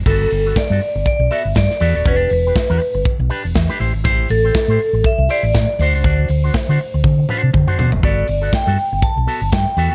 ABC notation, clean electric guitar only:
X:1
M:4/4
L:1/16
Q:"Swing 16ths" 1/4=120
K:G
V:1 name="Clean electric guitar"
[B,FA]2 z [B,FA] z [B,FA] z4 [B,FA] z3 [B,FA] [B,FA] | [DGd]2 z [DGB] z [DGB]2 z3 [DGB] z2 [DGB] [EGc] z | [EGc]2 z [EGc] z [EGc] z4 [EGc] z3 [DFc] [DFc] | [DFd]2 z [DFc] z [DFc] z4 [DFc]2 z [DFc] [DFc] z |
[B,FA]2 z [B,FA] z [B,FA] z4 [B,FA] z3 [B,FA] [B,FA] |]